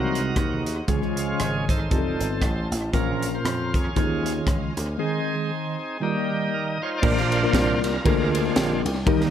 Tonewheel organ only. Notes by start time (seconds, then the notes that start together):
Already playing: F#3 A#3 C4 D#4 F#4 A#4
0.88 F3 G#3 C#4
1.19 F4
1.41 G#4
1.70 D#4 A4 C5
1.91 G3 A3 D#4
2.93 F3 A#3 C#4 F4 A#4
3.34 F4 C5
3.75 C#4 F4 G#4
3.97 F3 G#3 C#4
4.99 D#3 G#3 C4 D#4 G#4
5.80 G#4
6.02 D#3 G3 A#3 D#4 G4
6.54 A#4
6.68 D#5
6.82 F4 C5 C#5
6.98 D5
7.03 F3 A#3 D4 F4 C5
7.85 F4 A#4
8.06 G#3 C4 D4
9.06 G3 A#3 D#4